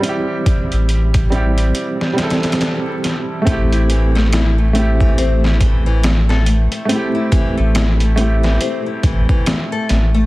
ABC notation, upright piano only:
X:1
M:4/4
L:1/16
Q:"Swing 16ths" 1/4=70
K:Am
V:1 name="Upright piano"
[G,CEG]6 [G,CEG] z3 [G,CEA]6 | [A,CEG]6 [A,CEG] z8 z | [A,CEG]6 [A,CEG] z8 z |]